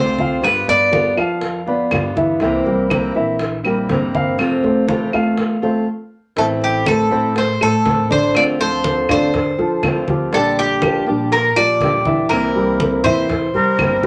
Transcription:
Already playing: upright bass C2, steel-string acoustic guitar C3 A3 C4 F4, grand piano C5, cuban tres C5
0.19 grand piano F4 F5, high conga
0.42 upright bass G2, steel-string acoustic guitar G3 B3 F4, cuban tres B4, high bongo, high conga, claves
0.68 upright bass G2, grand piano B3 B4 D5, cuban tres D5, high bongo, high conga
0.91 steel-string acoustic guitar G3 B3 F4, high bongo, high conga
1.16 upright bass F2, grand piano F3 F4 F5, steel-string acoustic guitar B3 F4, high bongo, claves
1.41 muted steel-string acoustic guitar stroke, high bongo, high conga
1.66 grand piano B3 B4 D5, steel-string acoustic guitar B3 F4, high conga
1.91 upright bass G2, steel-string acoustic guitar G3 B3 F4, high bongo, low bongo, high conga, claves
2.16 grand piano E3 E4 E5, high bongo, high conga
2.40 upright bass C2, steel-string acoustic guitar C3 E3 A#3 C4 E4, grand piano E3 E4 E5, high bongo, high conga
2.65 upright bass C2, grand piano G3 G4 A#4, high conga
2.90 steel-string acoustic guitar C3 E3 A#3 C4 E4, high bongo, high conga, claves
3.15 upright bass A#1, grand piano E3 E4 E5, steel-string acoustic guitar A#3 C4 E4
3.39 muted steel-string acoustic guitar stroke, high bongo, high conga
3.64 grand piano G3 G4 A#4, steel-string acoustic guitar A#3 C4 E4, high conga, claves
3.89 upright bass G2, steel-string acoustic guitar C3 E3 A#3 C4 E4, high bongo, low bongo, high conga
4.15 grand piano F5, high conga
4.38 upright bass F2, steel-string acoustic guitar C3 A3 C4 F4, high bongo, high conga, claves
4.63 upright bass F2, grand piano A3 A4 C5, high bongo, high conga
4.87 steel-string acoustic guitar C3 E3 A3 C4 F4, high bongo, high conga
5.13 upright bass E2, grand piano A3 F4 F5, steel-string acoustic guitar A3 C4 F4, high bongo, claves
5.37 muted steel-string acoustic guitar stroke, high bongo, high conga
5.62 grand piano A3 A4 C5, steel-string acoustic guitar A3 C4 F4, high conga
6.36 upright bass A1, steel-string acoustic guitar E3 A3 C4 E4, grand piano E3 E4 E5, cuban tres A4, high bongo, high conga
6.62 cuban tres G4, high conga
6.86 grand piano A3 A4 C5, cuban tres A4, high bongo, high conga, claves
7.11 upright bass A2, grand piano A3 A4 C5, steel-string acoustic guitar A3 C4 E4
7.36 cuban tres C5, muted steel-string acoustic guitar stroke, high bongo, high conga
7.61 upright bass A2, grand piano A3 A4 C5, cuban tres A4, high conga, claves
7.85 steel-string acoustic guitar E3 A3 C4 E4, high bongo, low bongo, high conga
8.10 upright bass A1, grand piano D3 D4 D5, cuban tres C5, high conga
8.34 upright bass D2, steel-string acoustic guitar D3 A3 C4 F4, cuban tres D5, high bongo, high conga, claves
8.59 grand piano F3 F4 A4, cuban tres C5, high bongo, high conga
8.84 high bongo, high conga
9.09 upright bass D3, grand piano D3 D4 D5, steel-string acoustic guitar A3 C4 F4, cuban tres C5, high bongo, low conga, claves
9.33 muted steel-string acoustic guitar stroke, high bongo, high conga, low conga
9.58 upright bass D3, grand piano F3 F4 A4, high conga
9.83 steel-string acoustic guitar D3 A3 C4 F4, high bongo, low bongo, high conga, claves
10.07 upright bass D2, grand piano F3 F4 G4, high bongo, high conga
10.32 upright bass A#1, steel-string acoustic guitar D3 G3 D4 G4, grand piano D3 D4 D5, cuban tres A4, high bongo, high conga
10.57 cuban tres G4, high conga
10.82 grand piano F3 F4 G4, high bongo, high conga, claves
11.06 upright bass A#2, grand piano F3 F4 G4, steel-string acoustic guitar G3 D4 G4
11.32 cuban tres A#4, muted steel-string acoustic guitar stroke, high bongo, high conga
11.56 upright bass A#2, grand piano F3 F4 G4, cuban tres D5, high conga, claves
11.81 steel-string acoustic guitar D3 G3 D4 G4, high bongo, low bongo, high conga
12.05 upright bass A#1, grand piano E3 E4 E5, high conga
12.29 upright bass C2, steel-string acoustic guitar C3 E3 A#3 C4 E4, cuban tres A#4, high bongo, high conga, claves
12.55 grand piano G3 G4 A#4, high bongo, high conga
12.80 high bongo, high conga
13.03 upright bass C3, grand piano E3 E4 E5, steel-string acoustic guitar E3 A#3 C4 E4, cuban tres C5, low conga, claves
13.29 muted steel-string acoustic guitar stroke, high bongo, high conga, low conga
13.54 upright bass C3, grand piano G3 G4 A#4, flute A#4, high conga
13.78 upright bass G1, steel-string acoustic guitar E3 A#3 C4 E4, high bongo, low bongo, high conga, claves
14.03 upright bass A1, grand piano G3 G4 A4, high bongo, high conga

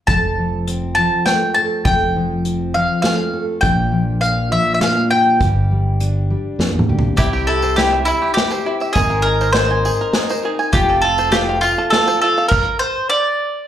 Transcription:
0.07 fingered electric bass F1, steel-string acoustic guitar F2 A4, mandolin A5, kick, closed hi-hat
0.38 steel-string acoustic guitar F3
0.67 steel-string acoustic guitar C4, closed hi-hat
0.95 steel-string acoustic guitar F3, mandolin A5
1.26 steel-string acoustic guitar A3, mandolin G5, snare, closed hi-hat
1.54 steel-string acoustic guitar A4, mandolin A5
1.85 fingered electric bass F1, steel-string acoustic guitar F2 A4, mandolin G5, kick, closed hi-hat
2.16 steel-string acoustic guitar F3
2.45 steel-string acoustic guitar C4, closed hi-hat
2.74 steel-string acoustic guitar F3, mandolin F5
3.02 steel-string acoustic guitar A3, mandolin F5, snare, closed hi-hat
3.33 steel-string acoustic guitar A4
3.61 fingered electric bass A#1, steel-string acoustic guitar A#2 F3 A#3 D4 G4, mandolin G5, kick, closed hi-hat
3.92 steel-string acoustic guitar F3
4.21 steel-string acoustic guitar D4, mandolin F5, closed hi-hat
4.51 steel-string acoustic guitar F3, mandolin E5
4.74 mandolin E5
4.81 steel-string acoustic guitar A#3, mandolin F5, snare, closed hi-hat
5.11 steel-string acoustic guitar G4, mandolin G5
5.41 fingered electric bass G1, steel-string acoustic guitar G2 G4, kick, closed hi-hat
5.71 steel-string acoustic guitar G3
6.00 steel-string acoustic guitar D4, closed hi-hat
6.30 steel-string acoustic guitar G3
6.59 fingered electric bass F2, steel-string acoustic guitar A#3, snare
6.74 fingered electric bass E2
6.79 mid tom
6.89 fingered electric bass D2, steel-string acoustic guitar G4
6.99 floor tom
7.04 fingered electric bass C2
7.16 fingered electric bass C2, twelve-string acoustic guitar C3 G3 C4 E4 G4, five-string banjo E4, mandolin G4, kick, closed hi-hat, tambourine
7.33 five-string banjo G4, tambourine
7.47 five-string banjo E4, mandolin A4
7.62 five-string banjo C5, tambourine
7.76 twelve-string acoustic guitar G3 C4 E4 G4, five-string banjo E4, mandolin G4, snare, closed hi-hat
7.92 five-string banjo E5
8.05 mandolin E4, five-string banjo E4, tambourine
8.22 five-string banjo G4
8.34 twelve-string acoustic guitar G3 C4 E4 G4, five-string banjo E4, mandolin G4, snare, closed hi-hat
8.50 five-string banjo C5, tambourine
8.64 twelve-string acoustic guitar C4 E4 G4, five-string banjo E4
8.80 five-string banjo E5, tambourine
8.93 fingered electric bass G#1, twelve-string acoustic guitar G#3 C4 D#4 A#4, mandolin G#4, five-string banjo G#4, kick, closed hi-hat, tambourine
9.10 five-string banjo A#4, tambourine
9.22 mandolin A#4
9.26 five-string banjo G#4
9.41 five-string banjo C5, tambourine
9.53 twelve-string acoustic guitar G#3 C4 D#4 A#4, five-string banjo G#4, mandolin C5, snare, closed hi-hat
9.71 five-string banjo G#5
9.85 five-string banjo G#4, tambourine
10.01 five-string banjo A#4
10.13 twelve-string acoustic guitar G#3 C4 D#4 A#4, five-string banjo G#4, snare, closed hi-hat
10.29 five-string banjo C5, tambourine
10.43 twelve-string acoustic guitar C4 D#4 A#4, five-string banjo G#4
10.59 five-string banjo G#5, tambourine
10.72 fingered electric bass F1, twelve-string acoustic guitar F3 C4 F4 A4, five-string banjo F4, mandolin G4, kick, closed hi-hat, tambourine
10.89 five-string banjo A4, tambourine
11.02 five-string banjo F4, mandolin A4
11.18 five-string banjo C5, tambourine
11.30 twelve-string acoustic guitar F3 C4 F4 A4, five-string banjo F4, mandolin G4, snare, closed hi-hat
11.49 five-string banjo F5
11.61 mandolin F4, five-string banjo F4, tambourine
11.78 five-string banjo A4
11.90 twelve-string acoustic guitar F3 C4 F4 A4, five-string banjo F4, mandolin A4, snare, closed hi-hat
12.07 five-string banjo C5, tambourine
12.22 five-string banjo F4, mandolin A4
12.37 five-string banjo F5, tambourine
12.48 mandolin A#4, kick, crash
12.79 mandolin C5
13.10 mandolin D5

